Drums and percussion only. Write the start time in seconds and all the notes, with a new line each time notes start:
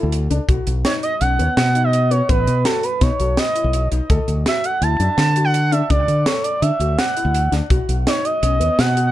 0.12 closed hi-hat
0.31 closed hi-hat
0.49 kick, closed hi-hat
0.67 closed hi-hat
0.85 snare, closed hi-hat
1.03 closed hi-hat
1.21 closed hi-hat
1.39 closed hi-hat
1.57 snare, closed hi-hat
1.75 closed hi-hat
1.93 closed hi-hat
2.11 closed hi-hat
2.29 kick, closed hi-hat
2.47 closed hi-hat
2.65 snare, closed hi-hat
2.83 closed hi-hat
3.01 kick, snare, closed hi-hat
3.20 closed hi-hat
3.37 snare, closed hi-hat
3.56 closed hi-hat
3.73 closed hi-hat
3.92 closed hi-hat
4.10 kick, closed hi-hat
4.28 closed hi-hat
4.46 snare, closed hi-hat
4.64 closed hi-hat
4.82 closed hi-hat
5.00 closed hi-hat
5.18 snare, closed hi-hat
5.36 closed hi-hat
5.54 closed hi-hat
5.72 closed hi-hat
5.90 kick, closed hi-hat
6.08 closed hi-hat
6.26 snare, closed hi-hat
6.44 closed hi-hat
6.62 closed hi-hat
6.80 closed hi-hat
6.99 snare, closed hi-hat
7.17 closed hi-hat
7.34 closed hi-hat
7.52 snare, closed hi-hat
7.70 kick, closed hi-hat
7.89 closed hi-hat
8.07 snare, closed hi-hat
8.25 closed hi-hat
8.43 closed hi-hat
8.61 closed hi-hat
8.79 snare, closed hi-hat
8.97 closed hi-hat